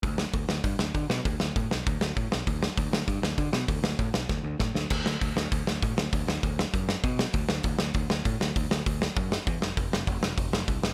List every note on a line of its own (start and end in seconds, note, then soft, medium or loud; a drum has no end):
0.03 0.24 D2 medium
0.03 kick loud
0.03 open hi-hat medium
0.18 snare loud
0.33 0.44 D2 medium
0.33 kick loud
0.33 open hi-hat soft
0.49 0.59 D2 medium
0.49 snare medium
0.64 0.74 G2 medium
0.64 kick loud
0.64 open hi-hat medium
0.79 0.90 D2 medium
0.79 snare loud
0.94 1.05 D3 medium
0.94 kick medium
0.94 open hi-hat medium
1.10 1.20 B2 medium
1.10 snare medium
1.25 1.35 D2 medium
1.25 kick loud
1.25 open hi-hat medium
1.40 1.50 D2 medium
1.40 snare medium
1.56 1.66 A2 medium
1.56 kick loud
1.56 open hi-hat soft
1.71 1.81 B1 medium
1.71 snare medium
1.87 1.97 D2 medium
1.87 kick loud
1.87 open hi-hat medium
2.01 2.11 D2 medium
2.01 snare loud
2.16 2.27 A2 medium
2.16 kick loud
2.16 open hi-hat soft
2.31 2.42 B1 medium
2.31 snare loud
2.47 2.68 D2 medium
2.47 kick loud
2.47 open hi-hat medium
2.63 snare loud
2.77 2.88 D2 medium
2.77 kick loud
2.77 open hi-hat medium
2.92 3.02 D2 medium
2.92 snare loud
3.08 3.18 G2 medium
3.08 kick medium
3.08 open hi-hat medium
3.22 3.33 D2 medium
3.22 snare loud
3.38 3.48 D3 medium
3.38 kick loud
3.38 open hi-hat medium
3.53 3.63 B2 medium
3.53 snare loud
3.68 3.79 D2 medium
3.68 kick loud
3.68 open hi-hat medium
3.83 3.93 D2 medium
3.83 snare loud
3.99 4.09 A2 medium
3.99 kick loud
3.99 open hi-hat soft
4.14 4.24 B1 medium
4.14 snare loud
4.29 4.40 D2 medium
4.29 kick loud
4.29 snare medium
4.44 4.54 D2 medium
4.59 4.70 A2 medium
4.59 kick loud
4.59 snare medium
4.75 4.85 D2 medium
4.75 snare medium
4.90 5.01 D2 medium
4.90 kick loud
4.90 crash loud
5.05 5.15 D2 medium
5.05 snare loud
5.21 5.32 D2 medium
5.21 kick loud
5.21 open hi-hat medium
5.36 5.46 D2 medium
5.36 snare medium
5.52 5.62 D2 medium
5.52 kick loud
5.52 open hi-hat medium
5.67 5.77 D2 medium
5.67 snare loud
5.82 5.93 A2 medium
5.82 kick loud
5.82 open hi-hat medium
5.97 6.07 D2 medium
5.97 snare loud
6.13 6.23 D2 medium
6.13 kick loud
6.13 open hi-hat medium
6.27 6.38 D2 medium
6.27 snare loud
6.43 6.64 D2 medium
6.43 kick loud
6.43 open hi-hat medium
6.59 snare loud
6.74 6.94 F#2 medium
6.74 kick loud
6.74 open hi-hat medium
6.89 snare loud
7.04 7.24 B2 medium
7.04 kick loud
7.04 open hi-hat medium
7.19 snare loud
7.33 7.44 D2 medium
7.33 kick loud
7.33 open hi-hat medium
7.49 7.59 D2 medium
7.49 snare loud
7.63 7.75 D2 medium
7.63 kick medium
7.63 open hi-hat medium
7.79 7.90 D2 medium
7.79 snare loud
7.94 8.05 D2 medium
7.94 kick loud
7.94 open hi-hat medium
8.10 8.20 D2 medium
8.10 snare loud
8.25 8.36 A2 medium
8.25 kick medium
8.25 open hi-hat medium
8.40 8.51 D2 medium
8.40 snare loud
8.56 8.66 D2 medium
8.56 kick loud
8.56 open hi-hat medium
8.71 8.81 D2 medium
8.71 snare loud
8.86 9.07 D2 medium
8.86 kick loud
8.86 open hi-hat medium
9.02 snare loud
9.16 9.37 F#2 medium
9.16 kick loud
9.16 open hi-hat medium
9.32 snare loud
9.47 9.57 E2 medium
9.47 kick loud
9.47 open hi-hat medium
9.61 9.71 F1 medium
9.61 snare medium
9.77 9.87 F1 medium
9.77 kick loud
9.77 open hi-hat medium
9.92 10.02 F1 medium
9.92 snare loud
10.07 10.17 F1 loud
10.07 kick loud
10.07 open hi-hat soft
10.21 10.32 F1 medium
10.21 snare loud
10.38 10.48 F1 medium
10.38 kick loud
10.38 open hi-hat medium
10.52 10.63 F1 medium
10.52 snare loud
10.68 10.78 C2 medium
10.68 kick loud
10.68 open hi-hat medium
10.82 10.93 F1 medium
10.82 snare loud